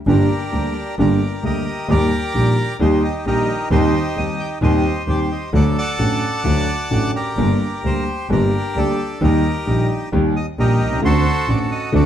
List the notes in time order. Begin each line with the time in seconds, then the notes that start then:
0.07 G1 G2 D3 G3 A#3 D4 G4 A#4
0.52 D2 D3 G3 A#3 G4
0.98 G1 G2 D3 G3 A#3 G4 A#4 D5
1.43 D2 D3 G3 A#3 G4 A#4 D#5
1.88 D#2 D#3 G3 A#3 G4 A#4 D5
2.34 A#1 A#2 D#3 G3 A#3 G4
2.79 D#2 D#3 G3 A#3 D#4 G4 C5
3.04 D#5
3.25 A#1 A#2 D#3 G3 A#3 D#4 G4 A#4
3.71 D#2 D#3 G3 C4 D#4 G4 C5
4.16 D#2 D#3 G3 C4 G4 D#5
4.40 G5
4.61 D#2 D#3 G3 C4 G4 C5 D#5
5.07 D#2 D#3 G3 C4 G4 D5
5.32 D#5
5.52 D2 D3 F#3 A3 F#4 A4 D5 F#5
5.78 D5 F#5 A5
5.98 A1 A2 D3 F#3 A3 F#4
6.44 D2 D3 F#3 A3 F#4
6.90 A1 A2 D3 F#3 A3 F#4
7.16 G4 A#4 D5
7.37 G1 G2 D3 G3 A#3 G4
7.83 D2 D3 G3 A#3 G4 C5
8.29 G1 G2 D3 G3 A#3 D4 G4 A#4
8.75 D2 D3 G3 A#3 D4 G4 A4
9.21 D#2 D#3 G3 A#3 D#4 G4 A#4
9.66 A#1 A#2 D#3 G3 A#3 G4
10.12 D#2 D#3 G3 A#3 G4
10.36 D#5
10.58 A#1 A#2 D#3 G3 A#3 D#4 G4 A#4
10.80 C2
10.87 B1
10.91 C2
10.98 C#2
11.02 D2 D3 A3 C4 F#4 A4 C5
11.47 A1 A2 D3 A3 C4 F#4 D5
11.72 D#5
11.92 D2 D3 A3 C4 F#4 A4 D5